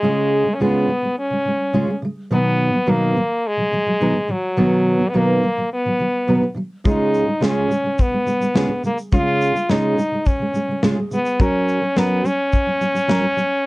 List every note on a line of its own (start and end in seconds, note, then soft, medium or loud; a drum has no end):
0.00 0.44 C#3 medium
0.00 0.56 G#3 medium
0.00 0.46 G#3 medium
0.00 0.46 C#4 medium
0.00 0.46 F4 medium
0.04 0.47 G#4 medium
0.46 0.59 C#3 soft
0.46 0.59 G#3 soft
0.55 0.63 C#4 medium
0.60 0.87 C#3 medium
0.60 0.89 G#3 medium
0.60 1.18 B3 medium
0.60 0.89 C#4 medium
0.60 0.89 F4 medium
0.60 0.89 G#4 medium
0.88 1.01 C#3 medium
0.88 1.03 G#3 medium
1.02 1.25 C#3 soft
1.02 1.27 G#3 soft
1.19 1.99 C#4 medium
1.30 1.44 C#3 soft
1.30 1.46 G#3 soft
1.45 1.68 C#3 soft
1.45 1.69 G#3 medium
1.73 1.86 C#3 medium
1.73 1.88 G#3 medium
1.73 1.88 C#4 medium
1.73 1.89 F4 medium
1.73 1.89 G#4 medium
1.87 2.01 C#3 soft
1.87 2.04 G#3 medium
2.02 2.25 C#3 medium
2.02 2.26 G#3 medium
2.31 2.71 B2 medium
2.31 2.72 D#3 medium
2.31 2.74 F#3 medium
2.31 2.74 B3 medium
2.31 2.92 B3 medium
2.31 2.74 D#4 medium
2.31 2.74 B4 medium
2.72 2.85 B2 soft
2.72 2.86 D#3 soft
2.72 2.86 F#3 soft
2.86 3.14 B2 medium
2.86 3.15 D#3 medium
2.86 3.16 F#3 medium
2.86 3.49 A#3 medium
2.86 3.16 B3 medium
2.86 3.16 D#4 medium
2.86 3.16 B4 medium
3.15 3.38 B2 medium
3.15 3.39 D#3 medium
3.15 3.40 F#3 medium
3.47 4.33 G#3 medium
3.57 3.70 B2 soft
3.57 3.72 D#3 soft
3.57 3.73 F#3 soft
3.72 3.85 B2 soft
3.72 3.86 D#3 medium
3.72 3.87 F#3 medium
3.86 3.99 B2 soft
3.86 4.00 D#3 soft
3.86 4.00 F#3 soft
4.00 4.13 B2 medium
4.00 4.15 D#3 medium
4.00 4.16 F#3 medium
4.00 4.16 B3 medium
4.00 4.16 D#4 medium
4.00 4.16 B4 medium
4.14 4.27 B2 soft
4.14 4.28 D#3 soft
4.14 4.30 F#3 soft
4.28 4.52 B2 medium
4.28 4.52 D#3 medium
4.28 4.53 F#3 medium
4.28 5.11 F#3 medium
4.57 4.98 B2 medium
4.57 4.99 D#3 medium
4.57 5.01 F#3 medium
4.57 5.01 B3 medium
4.57 5.01 D#4 medium
4.57 5.01 B4 medium
4.99 5.12 B2 soft
4.99 5.13 D#3 soft
4.99 5.13 F#3 soft
5.09 5.18 B3 medium
5.13 5.41 B2 medium
5.13 5.42 D#3 medium
5.13 5.43 F#3 medium
5.13 5.73 A#3 medium
5.13 5.43 B3 medium
5.13 5.44 D#4 medium
5.13 5.44 B4 medium
5.42 5.56 B2 soft
5.42 5.57 D#3 medium
5.42 5.58 F#3 medium
5.57 5.80 B2 soft
5.57 5.81 D#3 soft
5.57 5.81 F#3 soft
5.74 6.54 B3 medium
5.85 5.97 B2 soft
5.85 5.99 D#3 soft
5.85 6.00 F#3 soft
5.99 6.22 B2 soft
5.99 6.23 D#3 medium
5.99 6.24 F#3 soft
6.27 6.40 B2 medium
6.27 6.41 D#3 medium
6.27 6.42 F#3 medium
6.27 6.43 B3 medium
6.27 6.43 D#4 medium
6.27 6.43 B4 medium
6.41 6.53 B2 soft
6.41 6.55 D#3 soft
6.41 6.56 F#3 medium
6.55 6.79 B2 medium
6.55 6.79 D#3 medium
6.55 6.80 F#3 medium
6.84 7.25 C#3 medium
6.84 7.28 G#3 medium
6.84 7.28 C#4 medium
6.84 7.28 F4 medium
6.84 7.28 G#4 medium
6.84 kick loud
6.84 shaker medium
6.89 7.40 D#4 medium
7.14 shaker soft
7.26 7.39 C#3 soft
7.26 7.40 G#3 soft
7.40 7.68 C#3 medium
7.40 7.70 G#3 medium
7.40 7.70 C#4 medium
7.40 7.70 F4 medium
7.40 7.70 G#4 medium
7.40 snare medium
7.40 shaker medium
7.45 8.04 C#4 medium
7.69 7.82 C#3 soft
7.69 7.85 G#3 medium
7.69 shaker soft
7.83 8.07 C#3 soft
7.83 8.08 G#3 soft
7.99 8.86 B3 medium
7.99 kick medium
7.99 shaker medium
8.11 8.24 C#3 soft
8.11 8.27 G#3 soft
8.26 8.38 C#3 soft
8.26 8.41 G#3 medium
8.26 shaker soft
8.40 8.53 C#3 soft
8.40 8.54 G#3 soft
8.40 shaker medium
8.54 8.67 C#3 medium
8.54 8.70 G#3 medium
8.54 8.70 C#4 medium
8.54 8.70 F4 medium
8.54 8.70 G#4 medium
8.54 snare loud
8.54 shaker medium
8.69 8.82 C#3 soft
8.69 8.84 G#3 soft
8.83 9.07 C#3 medium
8.83 9.08 G#3 medium
8.83 8.99 A#3 medium
8.83 shaker soft
8.98 shaker soft
9.12 9.54 C#3 medium
9.12 9.55 G#3 medium
9.12 9.55 C#4 medium
9.12 9.56 F4 medium
9.12 9.72 F4 medium
9.12 9.56 G#4 medium
9.12 kick medium
9.12 shaker medium
9.41 shaker soft
9.55 9.68 C#3 soft
9.55 9.69 G#3 soft
9.55 shaker medium
9.69 9.95 C#3 medium
9.69 9.98 G#3 medium
9.69 9.98 C#4 medium
9.69 10.28 D#4 medium
9.69 9.99 F4 medium
9.69 9.99 G#4 medium
9.69 snare medium
9.69 shaker medium
9.96 10.10 C#3 medium
9.96 10.13 G#3 medium
9.96 shaker soft
10.11 10.35 C#3 soft
10.11 10.36 G#3 soft
10.26 10.85 C#4 medium
10.26 kick medium
10.26 shaker medium
10.39 10.52 C#3 soft
10.39 10.55 G#3 soft
10.53 10.67 C#3 medium
10.53 10.69 G#3 medium
10.53 shaker soft
10.68 10.81 C#3 soft
10.68 10.82 G#3 soft
10.82 10.96 C#3 medium
10.82 10.97 G#3 medium
10.82 10.97 C#4 medium
10.82 10.98 F4 medium
10.82 10.98 G#4 medium
10.82 snare loud
10.82 shaker medium
10.97 11.10 C#3 soft
10.97 11.13 G#3 soft
11.11 11.34 C#3 soft
11.11 11.35 G#3 medium
11.11 11.43 B3 medium
11.11 shaker soft
11.25 shaker soft
11.39 11.80 F#3 medium
11.39 11.83 C#4 medium
11.39 11.99 C#4 medium
11.39 11.83 F#4 medium
11.39 11.83 A#4 medium
11.39 kick loud
11.39 shaker medium
11.68 shaker soft
11.81 11.95 F#3 soft
11.96 12.23 F#3 medium
11.96 12.28 B3 medium
11.96 12.25 C#4 medium
11.96 12.25 F#4 medium
11.96 12.26 A#4 medium
11.96 snare medium
11.96 shaker medium
12.24 12.47 F#3 medium
12.24 12.48 C#4 medium
12.24 13.66 C#4 medium
12.24 shaker soft
12.53 kick medium
12.53 shaker medium
12.67 12.80 F#3 soft
12.67 12.82 C#4 soft
12.81 12.93 F#3 medium
12.81 12.96 C#4 medium
12.81 shaker soft
12.94 13.07 F#3 soft
12.94 13.08 C#4 soft
12.94 shaker soft
13.08 13.20 F#3 medium
13.08 13.23 C#4 medium
13.08 13.24 F#4 medium
13.08 13.24 A#4 medium
13.08 snare loud
13.08 shaker medium
13.22 13.36 F#3 soft
13.37 13.60 F#3 medium
13.37 13.62 C#4 medium
13.37 shaker soft